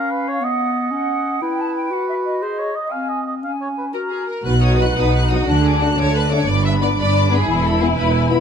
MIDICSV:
0, 0, Header, 1, 10, 480
1, 0, Start_track
1, 0, Tempo, 330579
1, 629, Time_signature, 6, 3, 24, 8
1, 3991, Tempo, 341686
1, 7351, Tempo, 333704
1, 12041, End_track
2, 0, Start_track
2, 0, Title_t, "Violin section"
2, 0, Program_c, 0, 48
2, 6388, Note_on_c, 0, 90, 39
2, 6616, Note_off_c, 0, 90, 0
2, 6641, Note_on_c, 0, 87, 39
2, 6879, Note_off_c, 0, 87, 0
2, 6890, Note_on_c, 0, 90, 38
2, 7121, Note_off_c, 0, 90, 0
2, 7129, Note_on_c, 0, 87, 40
2, 7358, Note_off_c, 0, 87, 0
2, 7366, Note_on_c, 0, 90, 36
2, 7584, Note_off_c, 0, 90, 0
2, 7612, Note_on_c, 0, 87, 39
2, 7844, Note_off_c, 0, 87, 0
2, 7845, Note_on_c, 0, 90, 44
2, 8064, Note_off_c, 0, 90, 0
2, 8084, Note_on_c, 0, 86, 35
2, 8320, Note_off_c, 0, 86, 0
2, 8327, Note_on_c, 0, 90, 38
2, 8562, Note_off_c, 0, 90, 0
2, 8565, Note_on_c, 0, 86, 43
2, 8799, Note_on_c, 0, 90, 41
2, 8802, Note_off_c, 0, 86, 0
2, 9023, Note_off_c, 0, 90, 0
2, 9042, Note_on_c, 0, 86, 44
2, 9279, Note_off_c, 0, 86, 0
2, 9296, Note_on_c, 0, 86, 42
2, 9513, Note_off_c, 0, 86, 0
2, 9544, Note_on_c, 0, 83, 37
2, 9772, Note_off_c, 0, 83, 0
2, 9786, Note_on_c, 0, 86, 38
2, 10012, Note_off_c, 0, 86, 0
2, 10020, Note_on_c, 0, 83, 44
2, 10249, Note_off_c, 0, 83, 0
2, 10281, Note_on_c, 0, 86, 43
2, 10486, Note_off_c, 0, 86, 0
2, 10512, Note_on_c, 0, 83, 48
2, 10735, Note_on_c, 0, 80, 47
2, 10737, Note_off_c, 0, 83, 0
2, 10952, Note_off_c, 0, 80, 0
2, 10965, Note_on_c, 0, 83, 38
2, 11202, Note_off_c, 0, 83, 0
2, 11204, Note_on_c, 0, 80, 41
2, 11440, Note_off_c, 0, 80, 0
2, 11442, Note_on_c, 0, 83, 46
2, 11671, Note_on_c, 0, 80, 48
2, 11677, Note_off_c, 0, 83, 0
2, 11894, Note_off_c, 0, 80, 0
2, 11898, Note_on_c, 0, 83, 44
2, 12041, Note_off_c, 0, 83, 0
2, 12041, End_track
3, 0, Start_track
3, 0, Title_t, "Flute section"
3, 0, Program_c, 1, 73
3, 0, Note_on_c, 1, 77, 46
3, 605, Note_off_c, 1, 77, 0
3, 620, Note_on_c, 1, 78, 55
3, 1335, Note_off_c, 1, 78, 0
3, 1352, Note_on_c, 1, 78, 52
3, 2054, Note_off_c, 1, 78, 0
3, 2061, Note_on_c, 1, 79, 50
3, 2303, Note_off_c, 1, 79, 0
3, 2310, Note_on_c, 1, 81, 55
3, 2546, Note_on_c, 1, 79, 49
3, 2549, Note_off_c, 1, 81, 0
3, 2783, Note_off_c, 1, 79, 0
3, 2788, Note_on_c, 1, 78, 50
3, 3029, Note_off_c, 1, 78, 0
3, 3029, Note_on_c, 1, 76, 48
3, 3116, Note_off_c, 1, 76, 0
3, 3257, Note_on_c, 1, 75, 46
3, 4201, Note_off_c, 1, 75, 0
3, 4209, Note_on_c, 1, 80, 40
3, 4610, Note_off_c, 1, 80, 0
3, 4939, Note_on_c, 1, 80, 35
3, 5652, Note_off_c, 1, 80, 0
3, 5674, Note_on_c, 1, 82, 31
3, 6159, Note_off_c, 1, 82, 0
3, 6405, Note_on_c, 1, 78, 46
3, 7780, Note_off_c, 1, 78, 0
3, 7839, Note_on_c, 1, 81, 47
3, 9283, Note_off_c, 1, 81, 0
3, 9302, Note_on_c, 1, 83, 49
3, 12041, Note_off_c, 1, 83, 0
3, 12041, End_track
4, 0, Start_track
4, 0, Title_t, "Oboe"
4, 0, Program_c, 2, 68
4, 0, Note_on_c, 2, 70, 51
4, 161, Note_on_c, 2, 71, 52
4, 183, Note_off_c, 2, 70, 0
4, 407, Note_on_c, 2, 73, 59
4, 429, Note_off_c, 2, 71, 0
4, 643, Note_on_c, 2, 75, 50
4, 664, Note_off_c, 2, 73, 0
4, 2054, Note_off_c, 2, 75, 0
4, 2062, Note_on_c, 2, 71, 47
4, 3518, Note_on_c, 2, 72, 42
4, 3540, Note_off_c, 2, 71, 0
4, 3761, Note_on_c, 2, 73, 47
4, 3783, Note_off_c, 2, 72, 0
4, 3997, Note_on_c, 2, 75, 40
4, 4018, Note_off_c, 2, 73, 0
4, 4222, Note_on_c, 2, 77, 44
4, 4243, Note_off_c, 2, 75, 0
4, 4464, Note_on_c, 2, 75, 40
4, 4485, Note_off_c, 2, 77, 0
4, 4699, Note_off_c, 2, 75, 0
4, 4713, Note_on_c, 2, 75, 38
4, 4817, Note_off_c, 2, 75, 0
4, 4953, Note_on_c, 2, 77, 36
4, 5057, Note_off_c, 2, 77, 0
4, 5202, Note_on_c, 2, 73, 38
4, 5306, Note_off_c, 2, 73, 0
4, 5437, Note_on_c, 2, 71, 32
4, 5544, Note_off_c, 2, 71, 0
4, 5675, Note_on_c, 2, 70, 29
4, 6149, Note_off_c, 2, 70, 0
4, 12041, End_track
5, 0, Start_track
5, 0, Title_t, "Violin section"
5, 0, Program_c, 3, 48
5, 5659, Note_on_c, 3, 70, 50
5, 5758, Note_off_c, 3, 70, 0
5, 5890, Note_on_c, 3, 68, 43
5, 6136, Note_on_c, 3, 70, 42
5, 6140, Note_off_c, 3, 68, 0
5, 6381, Note_on_c, 3, 71, 54
5, 6384, Note_off_c, 3, 70, 0
5, 6481, Note_off_c, 3, 71, 0
5, 6626, Note_on_c, 3, 73, 60
5, 6845, Note_on_c, 3, 71, 53
5, 6866, Note_off_c, 3, 73, 0
5, 7090, Note_off_c, 3, 71, 0
5, 7107, Note_on_c, 3, 71, 65
5, 7579, Note_off_c, 3, 71, 0
5, 7597, Note_on_c, 3, 66, 54
5, 8064, Note_on_c, 3, 68, 57
5, 8067, Note_off_c, 3, 66, 0
5, 8305, Note_off_c, 3, 68, 0
5, 8320, Note_on_c, 3, 66, 52
5, 8559, Note_off_c, 3, 66, 0
5, 8560, Note_on_c, 3, 73, 74
5, 8795, Note_off_c, 3, 73, 0
5, 8811, Note_on_c, 3, 71, 58
5, 9046, Note_off_c, 3, 71, 0
5, 9048, Note_on_c, 3, 73, 61
5, 9267, Note_on_c, 3, 74, 67
5, 9280, Note_off_c, 3, 73, 0
5, 9515, Note_off_c, 3, 74, 0
5, 9540, Note_on_c, 3, 76, 62
5, 9632, Note_off_c, 3, 76, 0
5, 9774, Note_on_c, 3, 74, 55
5, 9867, Note_off_c, 3, 74, 0
5, 10007, Note_on_c, 3, 74, 71
5, 10466, Note_on_c, 3, 68, 57
5, 10474, Note_off_c, 3, 74, 0
5, 10936, Note_on_c, 3, 69, 60
5, 10944, Note_off_c, 3, 68, 0
5, 11185, Note_on_c, 3, 68, 54
5, 11188, Note_off_c, 3, 69, 0
5, 11283, Note_off_c, 3, 68, 0
5, 11410, Note_on_c, 3, 71, 66
5, 11657, Note_off_c, 3, 71, 0
5, 12041, End_track
6, 0, Start_track
6, 0, Title_t, "Clarinet"
6, 0, Program_c, 4, 71
6, 0, Note_on_c, 4, 61, 49
6, 591, Note_on_c, 4, 59, 51
6, 612, Note_off_c, 4, 61, 0
6, 1323, Note_on_c, 4, 61, 51
6, 1345, Note_off_c, 4, 59, 0
6, 2048, Note_off_c, 4, 61, 0
6, 2057, Note_on_c, 4, 64, 45
6, 2765, Note_on_c, 4, 66, 50
6, 2786, Note_off_c, 4, 64, 0
6, 3512, Note_on_c, 4, 68, 41
6, 3534, Note_off_c, 4, 66, 0
6, 3981, Note_off_c, 4, 68, 0
6, 4223, Note_on_c, 4, 60, 38
6, 4943, Note_on_c, 4, 61, 35
6, 4964, Note_off_c, 4, 60, 0
6, 5670, Note_on_c, 4, 66, 33
6, 5691, Note_off_c, 4, 61, 0
6, 6157, Note_off_c, 4, 66, 0
6, 6399, Note_on_c, 4, 63, 41
6, 7825, Note_on_c, 4, 62, 37
6, 7847, Note_off_c, 4, 63, 0
6, 10705, Note_off_c, 4, 62, 0
6, 10714, Note_on_c, 4, 64, 40
6, 12041, Note_off_c, 4, 64, 0
6, 12041, End_track
7, 0, Start_track
7, 0, Title_t, "Viola section"
7, 0, Program_c, 5, 48
7, 6387, Note_on_c, 5, 66, 55
7, 7058, Note_off_c, 5, 66, 0
7, 7114, Note_on_c, 5, 63, 45
7, 7834, Note_off_c, 5, 63, 0
7, 7840, Note_on_c, 5, 62, 54
7, 8545, Note_off_c, 5, 62, 0
7, 8566, Note_on_c, 5, 57, 40
7, 9281, Note_on_c, 5, 59, 53
7, 9285, Note_off_c, 5, 57, 0
7, 9999, Note_off_c, 5, 59, 0
7, 10007, Note_on_c, 5, 62, 48
7, 10710, Note_off_c, 5, 62, 0
7, 10727, Note_on_c, 5, 64, 63
7, 12041, Note_off_c, 5, 64, 0
7, 12041, End_track
8, 0, Start_track
8, 0, Title_t, "French horn section"
8, 0, Program_c, 6, 60
8, 6850, Note_on_c, 6, 63, 35
8, 6851, Note_on_c, 6, 54, 39
8, 6942, Note_off_c, 6, 63, 0
8, 6943, Note_off_c, 6, 54, 0
8, 7577, Note_on_c, 6, 54, 44
8, 7590, Note_on_c, 6, 63, 44
8, 7667, Note_off_c, 6, 54, 0
8, 7676, Note_off_c, 6, 63, 0
8, 8310, Note_on_c, 6, 57, 41
8, 8310, Note_on_c, 6, 62, 39
8, 8396, Note_off_c, 6, 62, 0
8, 8397, Note_off_c, 6, 57, 0
8, 9038, Note_on_c, 6, 62, 50
8, 9042, Note_on_c, 6, 57, 53
8, 9124, Note_off_c, 6, 62, 0
8, 9128, Note_off_c, 6, 57, 0
8, 9734, Note_on_c, 6, 59, 42
8, 9740, Note_on_c, 6, 62, 42
8, 9826, Note_off_c, 6, 59, 0
8, 9830, Note_off_c, 6, 62, 0
8, 10455, Note_on_c, 6, 59, 50
8, 10457, Note_on_c, 6, 62, 45
8, 10548, Note_off_c, 6, 59, 0
8, 10549, Note_off_c, 6, 62, 0
8, 11195, Note_on_c, 6, 64, 49
8, 11202, Note_on_c, 6, 59, 48
8, 11281, Note_off_c, 6, 64, 0
8, 11288, Note_off_c, 6, 59, 0
8, 11907, Note_on_c, 6, 64, 57
8, 11908, Note_on_c, 6, 59, 58
8, 11993, Note_off_c, 6, 64, 0
8, 11994, Note_off_c, 6, 59, 0
8, 12041, End_track
9, 0, Start_track
9, 0, Title_t, "Cello section"
9, 0, Program_c, 7, 48
9, 6396, Note_on_c, 7, 47, 57
9, 7030, Note_off_c, 7, 47, 0
9, 7108, Note_on_c, 7, 47, 46
9, 7745, Note_off_c, 7, 47, 0
9, 7830, Note_on_c, 7, 50, 56
9, 8469, Note_off_c, 7, 50, 0
9, 8546, Note_on_c, 7, 50, 50
9, 9190, Note_off_c, 7, 50, 0
9, 9275, Note_on_c, 7, 43, 61
9, 9912, Note_off_c, 7, 43, 0
9, 9993, Note_on_c, 7, 43, 48
9, 10632, Note_off_c, 7, 43, 0
9, 10712, Note_on_c, 7, 40, 62
9, 11350, Note_off_c, 7, 40, 0
9, 11436, Note_on_c, 7, 40, 56
9, 12041, Note_off_c, 7, 40, 0
9, 12041, End_track
10, 0, Start_track
10, 0, Title_t, "Double bass section"
10, 0, Program_c, 8, 48
10, 6404, Note_on_c, 8, 35, 43
10, 7034, Note_off_c, 8, 35, 0
10, 7117, Note_on_c, 8, 35, 44
10, 7750, Note_off_c, 8, 35, 0
10, 7830, Note_on_c, 8, 38, 53
10, 8469, Note_off_c, 8, 38, 0
10, 8564, Note_on_c, 8, 38, 53
10, 9199, Note_off_c, 8, 38, 0
10, 9283, Note_on_c, 8, 31, 53
10, 9916, Note_off_c, 8, 31, 0
10, 9997, Note_on_c, 8, 31, 49
10, 10634, Note_off_c, 8, 31, 0
10, 10721, Note_on_c, 8, 28, 51
10, 11354, Note_off_c, 8, 28, 0
10, 11437, Note_on_c, 8, 28, 52
10, 12041, Note_off_c, 8, 28, 0
10, 12041, End_track
0, 0, End_of_file